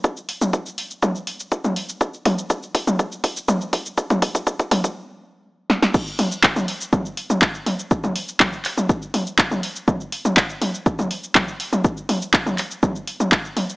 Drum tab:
CC |----------------|----------------|----------------|x---------------|
HH |--o---o---o---o-|--o---o---o---o-|--o---o---------|--o---o---o---o-|
SH |xx-xxx-xxx-xxx-x|xx-xxx-xxx-xxx-x|xx-xxx-x--------|xx-xxx-xxx-xxx-x|
CP |----------------|----------------|----------------|----x-------x---|
SD |----------------|----------------|--------------oo|----------------|
T2 |---o----o----o--|--o----o----o---|-o----o---------|--o--o--o--o--o-|
BD |o---o---o---o---|o-o-o-o-o-o-o-o-|oooooooo--------|o---o---o---o---|

CC |----------------|----------------|----------------|
HH |--o---o---o---o-|--o---o---o---o-|--o---o---o---o-|
SH |xx-xxx-xxx-xxx-x|xx-xxx-xxx-xxx-x|xx-xxx-xxx-xxx-x|
CP |----x-x-----x---|----x-------x---|----x-x-----x---|
SD |----------------|----------------|----------------|
T2 |-o--o--o--o--o--|o--o--o--o--o--o|--o--o--o--o--o-|
BD |o---o---o---o---|o---o---o---o---|o---o---o---o---|